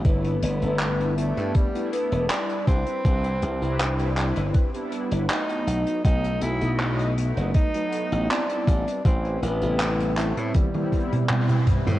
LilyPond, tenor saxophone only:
\new Staff \with { instrumentName = "Tenor saxophone" } { \time 4/4 \key a \dorian \tempo 4 = 80 b4. a8 g8 b8 d'8 c'8~ | c'2~ c'8 r8 ees'4 | dis'8 e'4 r8 dis'4 d'4 | c'8 b4 a8 g4. r8 | }